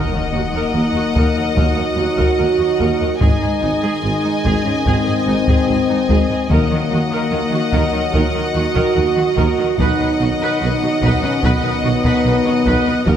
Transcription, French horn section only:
0.00 1.52 A#3 medium
1.55 3.17 F#4 medium
3.21 4.01 D#4 medium
4.03 4.63 D#4 medium
4.64 4.85 C#4 medium
4.85 6.50 C4 medium
6.49 7.96 A#3 medium
8.13 9.74 F#4 medium
9.78 10.60 D#4 medium
10.61 11.21 D#4 medium
11.23 11.43 C#4 medium
11.43 13.07 B3 medium
13.06 13.17 F#4 medium

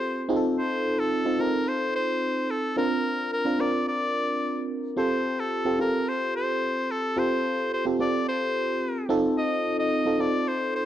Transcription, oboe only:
0.00 0.30 C5 loud
0.58 1.01 C5 loud
0.99 1.42 A4 medium
1.40 1.70 A#4 medium
1.68 1.95 C5 loud
1.96 2.52 C5 loud
2.50 2.77 A4 medium
2.78 3.29 A#4 loud
3.33 3.62 A#4 loud
3.60 3.87 D5 loud
3.88 4.66 D5 loud
4.98 5.41 C5 medium
5.39 5.80 A4 medium
5.81 6.10 A#4 medium
6.08 6.35 C5 medium
6.36 6.93 C5 loud
6.91 7.20 A4 medium
7.18 7.73 C5 loud
7.73 7.85 C5 loud
8.01 8.26 D5 loud
8.29 9.06 C5 loud
9.38 9.76 D#5 loud
9.79 10.22 D#5 loud
10.20 10.49 D5 loud
10.48 10.75 C5 loud
10.75 10.85 C5 loud

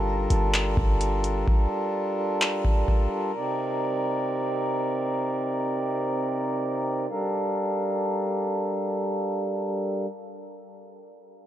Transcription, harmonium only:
0.00 3.31 G3 medium
0.00 3.31 D4 medium
0.00 3.31 F4 medium
0.00 3.31 A4 medium
0.00 7.06 A#4 medium
3.35 7.06 C3 medium
3.35 7.06 C4 medium
3.35 7.06 D#4 medium
3.35 7.06 D5 medium
7.10 10.06 G3 medium
7.10 10.06 D4 medium
7.10 10.06 A4 medium
7.10 10.06 A#4 medium
7.10 10.06 F5 medium

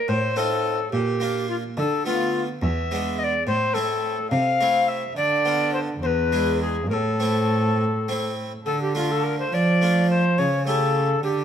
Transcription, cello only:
0.09 0.89 A2 medium
0.93 1.74 A#2 medium
1.78 2.58 D3 medium
2.62 3.43 E2 medium
3.47 4.28 A2 medium
4.32 5.13 C3 medium
5.16 5.98 D3 medium
6.01 6.91 E2 medium
6.89 8.45 A2 soft
8.65 9.48 D3 medium
9.52 10.40 F3 medium
10.38 11.22 C#3 soft
11.22 11.44 D3 medium

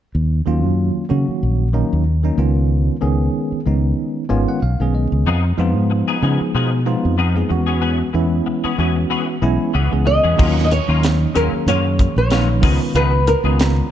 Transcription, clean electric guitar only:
5.27 5.45 F3 medium
5.27 5.44 B3 medium
5.27 5.44 D#4 medium
5.27 5.43 G#4 medium
5.44 muted clean electric guitar stroke soft
5.59 muted clean electric guitar stroke soft
5.90 muted clean electric guitar stroke soft
6.08 6.21 B3 soft
6.08 6.22 D#4 soft
6.08 6.22 G#4 medium
6.22 6.40 F3 soft
6.22 6.40 B3 soft
6.22 6.40 D#4 soft
6.22 6.39 G#4 medium
6.40 muted clean electric guitar stroke soft
6.55 6.73 F3 medium
6.55 6.71 B3 medium
6.55 6.70 D#4 medium
6.55 6.70 G#4 medium
6.71 muted clean electric guitar stroke soft
6.86 muted clean electric guitar stroke soft
7.18 7.36 F3 medium
7.18 7.35 B3 medium
7.18 7.35 D#4 medium
7.18 7.34 G#4 medium
7.36 muted clean electric guitar stroke soft
7.49 muted clean electric guitar stroke soft
7.67 7.80 B3 soft
7.67 7.80 C#4 soft
7.67 7.80 G#4 soft
7.81 8.00 E3 medium
7.81 7.99 B3 medium
7.81 7.99 C#4 medium
7.81 7.98 G#4 medium
7.99 muted clean electric guitar stroke soft
8.13 muted clean electric guitar stroke soft
8.46 muted clean electric guitar stroke soft
8.64 8.78 B3 soft
8.64 8.78 C#4 soft
8.64 8.78 G#4 medium
8.78 8.97 E3 medium
8.78 8.95 B3 medium
8.78 8.95 C#4 medium
8.78 8.95 G#4 medium
8.96 muted clean electric guitar stroke soft
9.10 9.29 E3 medium
9.10 9.27 B3 medium
9.10 9.27 C#4 medium
9.10 9.26 G#4 medium
9.27 muted clean electric guitar stroke soft
9.42 muted clean electric guitar stroke soft
9.74 9.92 E3 medium
9.74 9.91 B3 medium
9.74 9.91 C#4 medium
9.74 9.90 G#4 medium
9.92 muted clean electric guitar stroke soft
10.05 muted clean electric guitar stroke soft
10.24 10.38 B3 soft
10.24 10.37 C#4 soft
10.24 10.38 G#4 medium
10.38 10.56 F#3 medium
10.38 10.56 A#3 medium
10.38 10.55 C#4 medium
10.38 10.55 F4 medium
10.56 muted clean electric guitar stroke soft
10.71 muted clean electric guitar stroke soft
10.89 11.03 A#3 soft
10.89 11.03 C#4 soft
10.89 11.03 F4 soft
11.04 muted clean electric guitar stroke soft
11.35 11.53 F#3 medium
11.35 11.53 A#3 medium
11.35 11.53 C#4 medium
11.35 11.52 F4 medium
11.53 muted clean electric guitar stroke soft
11.68 11.85 F#3 medium
11.68 11.85 A#3 medium
11.68 11.85 C#4 medium
11.68 11.85 F4 medium
11.86 muted clean electric guitar stroke soft
12.00 muted clean electric guitar stroke soft
12.31 12.49 F#3 soft
12.31 12.48 A#3 soft
12.31 12.48 C#4 medium
12.31 12.48 F4 medium
12.49 muted clean electric guitar stroke soft
12.62 12.80 F3 soft
12.62 12.80 B3 medium
12.62 12.80 D#4 medium
12.62 12.80 G#4 medium
12.81 muted clean electric guitar stroke soft
12.95 13.13 F3 medium
12.95 13.12 B3 medium
12.95 13.12 D#4 medium
12.95 13.11 G#4 medium
13.12 muted clean electric guitar stroke soft
13.27 muted clean electric guitar stroke soft
13.45 13.58 B3 soft
13.45 13.58 D#4 soft
13.45 13.58 G#4 soft
13.59 muted clean electric guitar stroke soft

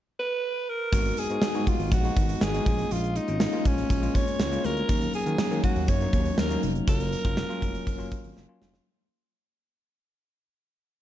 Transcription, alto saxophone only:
0.19 0.71 B4 loud
0.69 1.20 A#4 medium
1.19 1.70 G#4 medium
1.69 1.93 F4 medium
1.93 2.44 F#4 medium
2.43 2.94 G#4 loud
2.92 3.18 F4 medium
3.17 3.68 D#4 medium
3.66 4.17 C#4 medium
4.15 4.67 C#5 loud
4.65 5.14 A#4 loud
5.15 5.61 G#4 loud
5.64 5.90 F#4 medium
5.89 6.40 C#5 loud
6.39 6.63 A#4 medium
6.88 8.33 A#4 loud

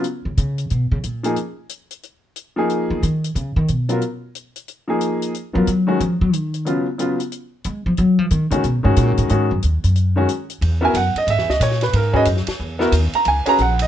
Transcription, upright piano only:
1.23 1.35 F3 medium
1.23 1.35 A#3 medium
1.23 1.36 D#4 medium
1.23 1.36 G#4 medium
2.56 2.99 F3 medium
2.56 3.00 A#3 medium
2.56 3.00 D#4 medium
2.56 3.01 G#4 medium
3.89 4.00 F#3 medium
3.89 4.00 B3 medium
3.89 4.01 F4 medium
3.89 4.01 A#4 medium
4.88 5.31 F3 medium
4.88 5.31 A#3 medium
4.88 5.31 D#4 medium
4.88 5.32 G#4 medium
5.53 5.65 F#3 medium
5.53 5.65 B3 medium
5.53 5.65 F4 soft
5.53 5.66 A#4 medium
5.87 5.98 D#3 medium
5.87 5.98 G#3 medium
5.87 5.99 C#4 medium
5.87 5.99 F#4 medium
6.65 6.84 C#3 medium
6.65 6.85 F#3 medium
6.65 6.85 B3 soft
6.65 6.85 F4 medium
6.98 7.17 C#3 medium
6.98 7.18 F#3 medium
6.98 7.18 B3 soft
6.98 7.18 F4 medium
8.50 8.62 D#3 medium
8.50 8.62 G#3 medium
8.50 8.62 C#4 medium
8.50 8.63 F#4 medium
8.83 9.26 D#3 medium
8.83 9.27 G#3 medium
8.83 9.27 C#4 medium
8.83 9.27 F#4 medium
9.29 9.48 D#3 medium
9.29 9.48 G#3 medium
9.29 9.49 C#4 medium
9.29 9.49 F#4 medium
10.16 10.27 D#3 medium
10.16 10.27 G#3 medium
10.16 10.27 C#4 medium
10.16 10.28 F#4 medium
10.81 10.92 B3 medium
10.81 10.93 E4 medium
10.81 10.93 F#4 medium
10.81 10.93 A#4 medium
10.81 10.95 G#5 medium
10.97 11.16 F#5 medium
11.18 11.28 D#5 medium
11.30 11.49 E5 medium
11.50 11.61 D#5 medium
11.63 11.82 C#5 medium
11.83 11.94 B4 medium
11.96 12.15 A#4 medium
12.13 12.25 C#4 medium
12.13 12.25 F#4 medium
12.13 12.25 G#4 medium
12.13 12.25 B4 medium
12.13 12.23 D#5 loud
12.79 12.91 B3 medium
12.79 12.91 E4 medium
12.79 12.91 F#4 medium
12.79 12.92 A#4 medium
13.15 13.26 A#5 loud
13.28 13.47 G#5 medium
13.46 13.57 C#4 medium
13.46 13.57 F#4 medium
13.46 13.58 G#4 medium
13.46 13.58 B4 medium
13.46 13.59 A#5 loud
13.62 13.81 F#5 medium
13.82 13.88 D#5 medium

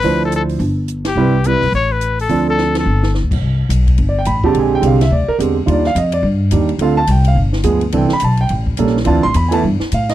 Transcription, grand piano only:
0.04 0.60 F3 medium
0.04 0.60 D4 soft
0.04 0.60 E4 medium
0.04 0.60 C5 medium
1.17 1.32 G3 medium
1.17 1.32 C4 medium
1.17 1.32 E4 medium
1.17 1.32 B4 medium
1.46 1.61 G3 soft
1.46 1.61 C4 soft
1.46 1.61 E4 soft
1.46 1.61 B4 soft
2.29 2.86 F3 medium
2.29 2.86 C4 soft
2.29 2.86 D4 medium
2.29 2.86 A4 medium
4.09 4.17 D5 medium
4.19 4.27 G5 medium
4.27 4.44 B5 medium
4.44 4.80 D3 medium
4.44 4.80 G#3 medium
4.44 4.80 C4 medium
4.44 4.81 G4 medium
4.44 4.55 A5 medium
4.60 4.74 G#5 medium
4.75 4.84 G5 medium
4.81 4.98 D3 medium
4.81 4.98 G#3 medium
4.81 4.98 C4 medium
4.81 4.98 G4 medium
4.87 5.02 F5 medium
5.02 5.12 E5 medium
5.12 5.29 D5 medium
5.28 5.35 A#4 medium
5.39 5.55 D3 medium
5.39 5.55 G#3 soft
5.39 5.55 C4 soft
5.39 5.55 G4 medium
5.66 5.83 D#3 medium
5.66 5.83 G3 soft
5.66 5.83 D4 medium
5.66 5.83 F4 medium
5.71 5.86 D5 medium
5.87 5.96 F5 loud
5.98 6.14 D#5 medium
6.13 6.24 D5 medium
6.52 6.68 D#3 medium
6.52 6.68 G3 soft
6.52 6.68 D4 soft
6.52 6.68 G4 medium
6.81 6.97 D3 medium
6.81 6.97 A3 medium
6.81 6.97 C4 medium
6.81 6.97 F4 medium
6.81 6.98 F5 medium
6.97 7.08 A5 loud
7.11 7.27 G5 medium
7.28 7.38 F5 medium
7.64 7.81 F3 medium
7.64 7.80 G#3 medium
7.64 7.80 B3 soft
7.64 7.81 G#4 medium
7.93 8.09 E3 medium
7.93 8.09 C4 medium
7.93 8.09 D4 medium
7.93 8.10 A4 medium
7.93 8.12 G5 medium
8.13 8.23 B5 loud
8.24 8.40 A5 medium
8.41 8.51 G5 medium
8.79 8.94 G3 medium
8.79 8.94 A#3 medium
8.79 8.95 C#4 soft
8.79 8.95 A4 medium
9.04 9.21 E3 medium
9.04 9.22 C4 medium
9.04 9.22 D4 medium
9.04 9.22 F4 medium
9.04 9.24 A5 medium
9.23 9.34 C6 loud
9.36 9.53 B5 medium
9.49 9.62 E3 medium
9.49 9.62 A3 medium
9.49 9.62 B3 medium
9.49 9.62 E4 medium
9.49 9.50 G#5 medium
9.53 9.59 A5 medium
9.94 10.10 F5 medium
10.10 10.14 D#5 medium

